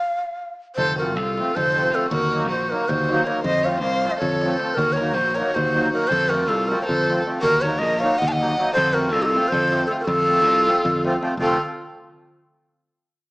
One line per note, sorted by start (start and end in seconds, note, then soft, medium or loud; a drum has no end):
0.00 0.49 F5 loud
0.75 1.16 F1 loud
0.75 0.97 A4 medium
0.75 0.96 C5 loud
0.75 darbuka dum loud
0.98 1.12 F3 medium
0.98 1.12 A3 medium
0.98 1.12 C4 medium
0.98 1.13 F4 medium
0.98 1.19 F#4 medium
0.98 1.17 A#4 medium
1.16 1.40 C2 loud
1.16 1.57 F4 medium
1.16 1.57 A4 medium
1.16 darbuka tek medium
1.27 darbuka tek soft
1.38 1.51 F3 medium
1.38 1.51 A3 medium
1.38 1.52 C4 medium
1.38 1.51 F4 medium
1.38 darbuka tek medium
1.46 darbuka tek soft
1.55 1.90 F1 loud
1.55 1.93 A4 medium
1.55 1.96 C5 loud
1.55 darbuka dum loud
1.67 darbuka tek soft
1.75 1.88 F3 medium
1.75 1.89 A3 medium
1.75 1.89 C4 medium
1.75 1.89 F4 medium
1.75 darbuka tek medium
1.91 2.06 F3 medium
1.91 2.06 A3 medium
1.91 2.07 C4 medium
1.91 2.08 F4 medium
1.91 2.07 F4 medium
1.91 2.11 A4 medium
1.91 darbuka tek medium
2.04 2.46 F#4 medium
2.04 darbuka tek soft
2.11 2.48 D#2 loud
2.11 2.47 A#4 loud
2.11 darbuka dum loud
2.33 2.46 F#3 medium
2.33 2.46 A#3 medium
2.33 2.47 D#4 medium
2.33 2.47 F#4 medium
2.33 darbuka tek medium
2.48 2.72 A#1 loud
2.48 2.68 F#4 medium
2.48 2.72 C5 medium
2.48 darbuka tek medium
2.63 darbuka tek soft
2.68 2.84 F#3 medium
2.68 2.84 A#3 medium
2.68 2.87 F#4 medium
2.68 2.90 A#4 medium
2.72 2.85 D#4 medium
2.72 2.85 F#4 medium
2.72 darbuka tek medium
2.81 darbuka tek soft
2.87 3.22 D#2 loud
2.87 3.26 F#4 medium
2.87 3.28 C5 loud
2.87 darbuka dum loud
3.09 3.22 F#3 medium
3.09 3.23 A#3 medium
3.09 3.23 D#4 medium
3.09 3.24 F#4 medium
3.09 darbuka tek medium
3.24 3.40 F#3 medium
3.24 3.40 A#3 medium
3.24 3.40 D#4 medium
3.24 3.42 A#4 medium
3.24 3.43 C#5 medium
3.24 darbuka tek loud
3.28 3.40 F#4 medium
3.37 darbuka tek soft
3.43 3.83 F2 loud
3.43 3.64 C5 loud
3.43 3.67 D#5 loud
3.43 darbuka dum loud
3.63 3.78 F3 medium
3.63 3.78 A3 medium
3.63 3.79 C4 medium
3.63 3.78 C#5 medium
3.63 3.82 F5 medium
3.63 darbuka tek medium
3.67 3.79 F4 medium
3.79 4.09 C5 loud
3.79 4.13 F5 medium
3.83 4.07 C2 loud
3.83 darbuka tek medium
4.04 4.17 F3 medium
4.04 4.17 A3 medium
4.04 4.18 C4 medium
4.04 4.18 F4 medium
4.04 darbuka tek medium
4.09 4.18 C5 medium
4.09 4.17 D#5 medium
4.14 4.59 C#5 medium
4.14 darbuka tek soft
4.18 4.55 F2 loud
4.18 4.58 A4 medium
4.18 darbuka dum loud
4.32 darbuka tek soft
4.41 4.55 F3 medium
4.41 4.56 A3 medium
4.41 4.56 C4 medium
4.41 4.56 F4 medium
4.41 darbuka tek medium
4.57 4.73 F3 medium
4.57 4.73 A3 medium
4.57 4.73 C4 medium
4.57 4.79 A4 medium
4.57 4.76 C5 loud
4.57 darbuka tek medium
4.62 4.74 F4 medium
4.68 darbuka tek soft
4.75 5.17 D#2 loud
4.75 4.97 F#4 medium
4.75 4.94 A#4 loud
4.75 darbuka dum loud
4.88 darbuka tek soft
4.93 5.16 A#4 medium
4.93 5.16 C#5 medium
4.97 5.12 F#3 medium
4.97 5.12 A#3 medium
4.97 5.12 D#4 medium
4.97 5.13 F#4 medium
4.97 darbuka tek medium
5.08 darbuka tek soft
5.14 5.40 A#1 loud
5.14 5.36 F#4 medium
5.14 5.37 C5 loud
5.14 darbuka tek medium
5.27 darbuka tek soft
5.35 5.51 F#3 medium
5.35 5.51 A#3 medium
5.35 5.55 A#4 medium
5.35 5.56 C#5 medium
5.35 darbuka tek medium
5.39 5.51 D#4 medium
5.39 5.52 F#4 medium
5.47 darbuka tek soft
5.54 5.89 D#2 medium
5.54 5.89 F#4 medium
5.54 5.93 C5 loud
5.54 darbuka dum loud
5.74 5.88 F#3 medium
5.74 5.88 A#3 medium
5.74 5.88 D#4 medium
5.74 5.88 F#4 medium
5.74 darbuka tek medium
5.85 darbuka tek soft
5.90 6.05 F#3 medium
5.90 6.05 A#3 medium
5.90 6.06 D#4 medium
5.90 6.11 F#4 medium
5.90 6.06 F#4 medium
5.90 6.09 A#4 loud
5.90 darbuka tek medium
6.08 6.31 A4 loud
6.08 6.31 C5 loud
6.08 darbuka dum medium
6.12 6.50 F2 loud
6.29 6.44 F3 medium
6.29 6.44 A3 medium
6.29 6.45 C4 medium
6.29 6.45 F4 medium
6.29 6.49 F#4 medium
6.29 6.50 A#4 loud
6.29 darbuka tek medium
6.47 6.73 C2 medium
6.47 6.70 F4 medium
6.47 6.69 A4 loud
6.47 darbuka tek medium
6.61 darbuka tek soft
6.67 6.83 F3 medium
6.67 6.83 A3 medium
6.67 6.83 C4 medium
6.67 6.84 F4 medium
6.67 6.81 F#4 medium
6.67 6.80 A#4 medium
6.72 darbuka tek medium
6.81 7.24 A4 medium
6.81 6.86 A#4 medium
6.81 7.16 C5 loud
6.81 6.86 C#5 medium
6.81 darbuka tek soft
6.89 7.22 F2 medium
6.89 darbuka dum loud
7.00 darbuka tek soft
7.08 7.20 F3 medium
7.08 7.21 A3 medium
7.08 7.21 C4 medium
7.08 7.21 F4 medium
7.08 darbuka tek medium
7.25 7.38 F3 medium
7.25 7.38 A3 medium
7.25 7.39 C4 medium
7.25 7.39 F4 medium
7.25 darbuka tek medium
7.36 darbuka tek soft
7.40 7.83 D#2 loud
7.40 7.63 F#4 loud
7.40 7.63 A#4 loud
7.45 darbuka dum loud
7.61 7.77 F#3 medium
7.61 7.77 A#3 medium
7.61 7.77 D#4 medium
7.61 7.78 A#4 medium
7.61 7.80 C#5 medium
7.65 7.78 F#4 medium
7.65 darbuka tek medium
7.78 8.01 A#4 medium
7.78 8.01 D#5 loud
7.83 8.06 A#1 loud
7.83 darbuka tek medium
7.94 darbuka tek soft
7.99 8.15 F#3 medium
7.99 8.16 A#3 medium
7.99 8.19 C#5 medium
7.99 8.20 F5 loud
8.03 8.16 D#4 medium
8.03 8.16 F#4 medium
8.03 darbuka tek medium
8.18 8.28 D#5 medium
8.18 8.30 F#5 loud
8.22 8.54 D#2 loud
8.22 darbuka dum medium
8.27 8.33 F5 medium
8.27 8.34 A5 medium
8.32 8.73 D#5 medium
8.32 8.72 F#5 loud
8.32 darbuka tek soft
8.40 8.53 F#3 medium
8.40 8.53 A#3 medium
8.40 8.53 D#4 medium
8.40 8.54 F#4 medium
8.40 darbuka tek medium
8.57 8.70 F#3 medium
8.57 8.70 A#3 medium
8.57 8.71 D#4 medium
8.57 8.71 F#4 medium
8.68 darbuka tek soft
8.73 8.96 A4 medium
8.73 8.95 C5 loud
8.73 darbuka dum loud
8.77 9.15 F2 loud
8.94 9.09 F3 medium
8.94 9.09 A3 medium
8.94 9.09 C4 medium
8.94 9.10 F4 medium
8.94 9.15 F#4 medium
8.94 9.14 A#4 loud
8.94 darbuka tek medium
9.12 9.37 C2 loud
9.12 9.24 F4 medium
9.12 9.24 A4 loud
9.12 darbuka tek medium
9.22 9.31 D#4 medium
9.22 9.26 F#4 medium
9.22 9.50 A4 loud
9.22 darbuka tek soft
9.29 9.54 F4 medium
9.34 9.47 F3 medium
9.34 9.47 A3 medium
9.34 9.48 C4 medium
9.34 9.48 F4 medium
9.34 darbuka tek medium
9.46 9.86 C5 loud
9.46 darbuka tek soft
9.52 9.85 F2 loud
9.52 9.89 A4 medium
9.52 darbuka dum loud
9.64 darbuka tek soft
9.70 9.83 F3 medium
9.70 9.84 A3 medium
9.70 9.84 C4 medium
9.70 9.84 F4 medium
9.70 darbuka tek medium
9.86 10.01 F3 medium
9.86 10.02 A3 medium
9.86 10.02 C4 medium
9.86 10.02 F4 medium
9.86 9.92 A4 medium
9.91 9.95 F4 medium
9.91 darbuka tek medium
10.00 10.09 F#4 medium
10.00 10.07 A#4 medium
10.00 darbuka tek soft
10.06 10.46 F2 loud
10.06 11.21 F4 loud
10.06 11.20 A4 loud
10.06 darbuka dum medium
10.18 darbuka tek soft
10.27 10.40 F3 medium
10.27 10.40 A3 medium
10.27 10.41 C4 medium
10.27 10.41 F4 medium
10.27 darbuka tek medium
10.39 darbuka tek soft
10.46 10.69 C2 loud
10.46 darbuka tek medium
10.59 darbuka tek soft
10.67 10.79 F3 medium
10.67 10.79 A3 medium
10.67 10.79 C4 medium
10.67 10.80 F4 medium
10.67 darbuka tek medium
10.85 11.17 F2 loud
10.85 darbuka dum loud
10.97 darbuka tek soft
11.04 11.16 F3 medium
11.04 11.16 A3 medium
11.04 11.17 C4 medium
11.04 11.16 F4 medium
11.04 darbuka tek medium
11.14 darbuka tek soft
11.21 11.33 F3 medium
11.21 11.34 A3 medium
11.21 11.34 C4 medium
11.21 11.34 F4 medium
11.21 darbuka tek medium
11.32 darbuka tek soft
11.37 11.57 F1 medium
11.37 11.58 F3 medium
11.37 11.58 A3 medium
11.37 11.58 C4 medium
11.37 11.58 F4 loud
11.37 11.58 F4 medium
11.37 11.58 A4 medium
11.37 darbuka dum medium